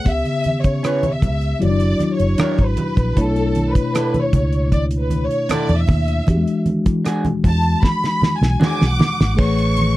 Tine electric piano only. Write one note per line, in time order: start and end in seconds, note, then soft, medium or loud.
0.04 1.58 C#3 medium
0.04 1.58 B3 medium
0.04 1.59 G4 medium
0.04 1.60 E5 medium
1.59 3.13 F#3 medium
1.59 3.13 E4 medium
1.59 3.14 F#4 medium
1.59 1.69 C#5 medium
1.70 3.16 D4 medium
3.15 6.23 B2 medium
3.15 6.24 A3 medium
3.15 6.24 D4 medium
3.15 6.24 E4 medium
3.15 6.25 C#5 medium
6.27 9.34 E3 medium
6.27 9.34 D4 medium
6.27 9.35 F#4 medium
6.27 6.36 G4 medium
6.37 9.39 G#3 medium
9.35 9.97 A3 medium
9.35 9.97 G#4 medium
9.35 9.97 B4 medium
9.35 9.97 C#5 medium